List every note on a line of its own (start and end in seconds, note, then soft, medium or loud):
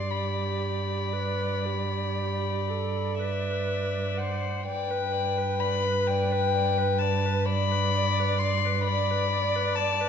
0.00 4.42 G2 soft
0.00 4.42 D5 soft
0.00 0.12 C6 medium
0.11 1.15 G4 soft
0.11 3.18 B5 soft
1.13 1.67 B4 soft
1.65 2.71 G4 soft
2.70 3.21 A4 soft
3.19 4.20 B4 soft
3.19 4.19 E5 soft
4.18 4.66 C5 soft
4.18 4.66 F#5 soft
4.67 10.09 G2 soft
4.67 7.47 B4 medium
4.67 4.92 D5 soft
4.67 5.62 G5 medium
4.91 5.14 B4 soft
5.12 5.39 D5 soft
5.38 5.60 B4 soft
5.60 5.87 D5 soft
5.60 6.08 B5 medium
5.85 6.10 B4 soft
6.07 6.34 D5 soft
6.07 7.00 G5 medium
6.32 6.54 B4 soft
6.56 6.80 D5 soft
6.78 7.02 B4 soft
6.98 7.27 D5 soft
6.98 7.47 A5 medium
7.26 7.48 B4 soft
7.46 8.85 D5 medium
7.46 7.73 D5 soft
7.46 8.40 B5 medium
7.72 7.98 B4 soft
7.96 8.21 D5 soft
8.20 8.41 B4 soft
8.39 8.66 D5 soft
8.39 8.84 C6 medium
8.65 8.89 B4 soft
8.85 10.09 D5 medium
8.85 9.12 D5 soft
8.85 9.77 B5 medium
9.11 9.31 B4 soft
9.31 9.57 D5 soft
9.56 9.80 B4 soft
9.75 10.02 D5 soft
9.75 10.09 A5 medium
10.01 10.09 B4 soft